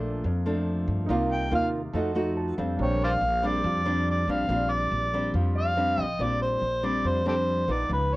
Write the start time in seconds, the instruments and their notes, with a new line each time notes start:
Already playing: upright bass A#1, nylon-string guitar A#2 F3 A3 D4, grand piano A#3 D4 A4 F5
0.24 upright bass F2, nylon-string guitar F2
0.46 nylon-string guitar F3 A3 D4
0.88 upright bass G2
1.06 upright bass C2, nylon-string guitar C3 A#3 F4, grand piano D#4 A#4 D5
1.10 nylon-string guitar D#4, grand piano F5
1.32 harmonica G5
1.52 upright bass D#2, nylon-string guitar A#3 D#4 F4, harmonica F5
1.94 upright bass F2, nylon-string guitar F3 A3 D#4 F#4, grand piano A4 D#5
1.98 grand piano F#5
2.15 nylon-string guitar A3 D#4 F#4
2.37 grand piano A5
2.58 upright bass F2, nylon-string guitar G3 C4 D4, grand piano F5
2.77 upright bass A#1, nylon-string guitar A#2, grand piano D4 A#4 C5
2.82 harmonica C#5, grand piano G5
3.04 harmonica C5 D5 F5
3.21 upright bass A#1
3.43 nylon-string guitar G3 C4 D4, harmonica D5
3.64 upright bass F2, nylon-string guitar F3
3.86 nylon-string guitar G3 C4 D4
4.10 harmonica D5
4.28 upright bass A#1, nylon-string guitar G3 C4 D4, harmonica F5
4.49 upright bass A#1, nylon-string guitar A#2 G3 C4 D4
4.72 harmonica D5
4.92 upright bass A#1
5.14 nylon-string guitar G3 C4 D4
5.34 upright bass F2, nylon-string guitar F3
5.55 grand piano D5, harmonica F5
5.77 nylon-string guitar G3 C4 D4, grand piano F5
5.98 upright bass A#1, grand piano G5
6.03 harmonica D#5
6.19 upright bass A#1, nylon-string guitar A#2 G3 C4 D4, harmonica D5
6.42 harmonica C5
6.62 upright bass A#1
6.83 nylon-string guitar G3 C4 D4, harmonica D5
7.05 upright bass F2, nylon-string guitar F3, harmonica C5
7.26 nylon-string guitar G3 C4 D4, harmonica G4 A4 C5
7.68 upright bass A#1, nylon-string guitar F3 B3 D#4, harmonica D5
7.89 upright bass C#2, nylon-string guitar C#3, harmonica B4